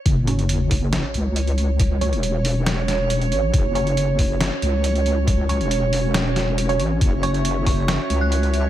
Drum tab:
HH |x-xxx-o-x-x-xxx-|x-xxx-o-x-x-xxx-|x-xxx-o-x-x-xxx-|x-xxx-o-x-x-xxx-|
SD |--------o-------|--------o-o-----|--------o-------|--------o-o-----|
BD |o-----o---------|o---------------|o-----o---------|o---------------|

HH |x-xxx-o-x-x-xxx-|
SD |--------o-------|
BD |o-----o---------|